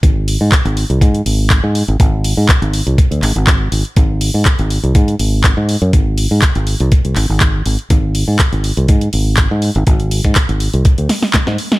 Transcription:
<<
  \new Staff \with { instrumentName = "Fingered electric bass" } { \clef bass \time 4/4 \key aes \major \tempo 4 = 122 aes,,8. aes,16 r16 aes,,16 r16 c,16 aes,16 r16 aes,,8. aes,16 r16 aes,,16 | aes,,8. aes,16 r16 aes,,16 r16 c,16 r16 d,16 aes,,16 aes,,8. aes,,16 r16 | aes,,8. aes,16 r16 aes,,16 r16 c,16 aes,16 r16 aes,,8. aes,16 r16 ges,16 | aes,,8. aes,16 r16 aes,,16 r16 c,16 r16 c,16 aes,,16 aes,,8. aes,,16 r16 |
aes,,8. aes,16 r16 aes,,16 r16 c,16 aes,16 r16 aes,,8. aes,16 r16 aes,,16 | aes,,8. aes,16 r16 aes,,16 r16 c,16 r16 d,16 r8. aes,16 r8 | }
  \new DrumStaff \with { instrumentName = "Drums" } \drummode { \time 4/4 <hh bd>8 hho8 <hc hh bd>16 hh16 hho16 hh16 <hh bd>16 hh16 hho8 <hc hh bd>8 hho16 hh16 | <hh bd>8 hho8 <hc hh bd>16 hh16 hho16 hh16 <hh bd>16 hh16 <hc hho>16 hh16 <hc hh bd>8 hho16 hh16 | <hh bd>8 hho8 <hc hh bd>16 hh16 hho16 hh16 <hh bd>16 hh16 hho8 <hc hh bd>8 hho16 hh16 | <hh bd>8 hho8 <hc hh bd>16 hh16 hho16 hh16 <hh bd>16 hh16 <hc hho>8 <hc hh bd>8 hho16 hh16 |
<hh bd>8 hho8 <hc hh bd>16 hh16 hho16 hh16 <hh bd>16 hh16 hho8 <hc hh bd>8 hho16 hh16 | <hh bd>16 hh16 hho16 <hh bd>16 <hc hh bd>16 hh16 hho16 hh16 <hh bd>16 hh16 <hho sn>16 sn16 <hc hh bd sn>16 sn16 hho16 <hh sn>16 | }
>>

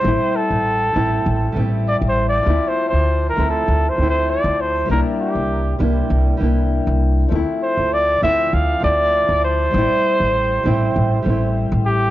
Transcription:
<<
  \new Staff \with { instrumentName = "Flugelhorn" } { \time 4/4 \key d \minor \tempo 4 = 99 c''8 a'2 r8 \tuplet 3/2 { d''8 c''8 d''8~ } | \tuplet 3/2 { d''8 c''8 c''8~ c''8 bes'8 a'8~ a'8 c''8 c''8 } d''8 c''8 | bes'8 g'4 r2 r8 | r8 c''8 d''8 e''8 f''8 d''4 c''8~ |
c''2. r8 g'8 | }
  \new Staff \with { instrumentName = "Nylon-string guitar" } { \time 4/4 \key d \minor <g a c' e'>4. <g a c' e'>4 <g a c' e'>4. | <f a c' e'>4. <f a c' e'>4 <f a c' e'>4. | <g bes d' e'>4. <g bes d' e'>4 <g bes d' e'>4. | <f a c' e'>4. <f a c' e'>4 <f a c' e'>4. |
<g a c' e'>4. <g a c' e'>4 <g a c' e'>4. | }
  \new Staff \with { instrumentName = "Upright bass" } { \clef bass \time 4/4 \key d \minor a,,16 r8 a,,8 r16 a,,16 r16 a,,16 r16 a,,8 r16 a,,8 r16 | d,16 r8 d,8 r16 d,16 r16 d,16 r16 d,8 r16 d,8 r16 | c,16 r8 c,8 r16 c,16 r16 c,16 r16 c,8 r16 c,8 r16 | d,16 r8 d,8 r16 d,16 r16 d,16 r16 d,8 r16 d,8 r16 |
a,,16 r8 a,,8 r16 a,,16 r16 a,,16 r16 a,,8 r16 a,,8 r16 | }
>>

